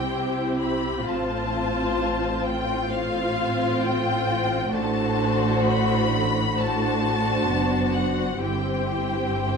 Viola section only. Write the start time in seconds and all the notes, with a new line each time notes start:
Already playing: C4 E4
1.04 C4 F4
2.93 C4 F4
4.74 A3 D4
6.56 A3 D4
7.47 B3
8.42 C4 E4